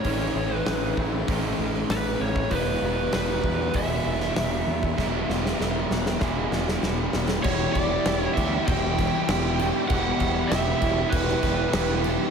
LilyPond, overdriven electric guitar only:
\new Staff \with { instrumentName = "Overdriven electric guitar" } { \clef bass \time 4/4 \key e \mixolydian \tempo 4 = 97 <a, e a cis' e'>2 <a, e a cis' e'>2 | <e, b, e gis b e'>2 <e, b, e gis b e'>2 | <e, b, e gis b e'>2 <e, b, e gis b e'>2 | <e, b, e g e' g'>4 <e g e' g'>8 <e g e' g'>8 <e, b, e g e' g'>4 <e g e' g'>4 |
<e, b, e g e' g'>4 <e g e' g'>8 <e g e' g'>8 <e, b, e g e' g'>4 <e g e' g'>4 | }